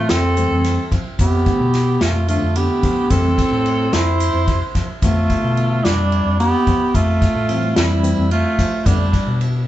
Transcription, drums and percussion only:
0.09 snare, ride
0.37 ride, shaker
0.64 snare, ride
0.92 kick, ride
1.19 kick, ride, shaker
1.46 kick, ride
1.73 snare, ride, shaker
2.01 snare, ride
2.28 ride, shaker
2.56 ride
2.83 kick, ride
3.10 kick, ride, shaker
3.38 kick, ride
3.66 ride, shaker
3.93 snare, ride
4.20 ride, shaker
4.48 kick, ride
4.75 kick, snare, ride
5.02 kick, ride, shaker
5.30 kick, ride
5.57 ride, shaker
5.85 snare, ride
6.12 ride
6.40 ride
6.67 kick, ride
6.94 kick, ride, shaker
7.22 kick, snare, ride
7.49 ride, shaker
7.76 snare, ride
8.04 ride, shaker
8.31 ride
8.59 kick, snare, ride
8.86 kick, ride, shaker
9.13 kick, ride
9.41 ride

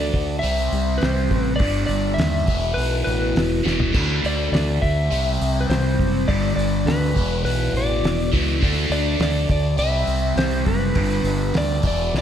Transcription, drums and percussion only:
0.14 kick, open hi-hat
0.43 open hi-hat
0.72 open hi-hat
1.02 snare, open hi-hat
1.31 kick, open hi-hat
1.59 kick, open hi-hat
1.88 open hi-hat
2.18 snare, open hi-hat
2.47 kick, open hi-hat
2.78 open hi-hat
3.07 open hi-hat
3.36 snare, open hi-hat
3.67 snare
3.80 floor tom
3.94 kick, crash
4.24 open hi-hat
4.54 snare, open hi-hat
4.83 kick, open hi-hat
5.12 open hi-hat
5.41 open hi-hat
5.70 snare, open hi-hat
6.00 kick, open hi-hat
6.29 kick, open hi-hat
6.59 open hi-hat
6.87 snare, open hi-hat
7.16 kick, open hi-hat
7.46 open hi-hat
7.76 open hi-hat
8.04 snare, open hi-hat
8.33 kick, open hi-hat
8.63 kick, open hi-hat
8.92 open hi-hat
9.20 snare, open hi-hat
9.49 kick, open hi-hat
9.78 open hi-hat
10.07 open hi-hat
10.38 snare, open hi-hat
10.66 kick, open hi-hat
10.95 kick, open hi-hat
11.25 open hi-hat
11.54 snare, open hi-hat
11.83 kick, open hi-hat
12.14 snare

